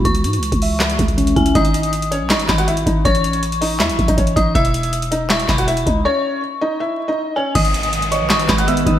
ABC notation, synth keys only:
X:1
M:4/4
L:1/8
Q:1/4=160
K:G#phr
V:1 name="Synth keys"
E,3 e2 G, C E | z8 | z8 | z8 |
z8 | D,3 d2 G, B, D |]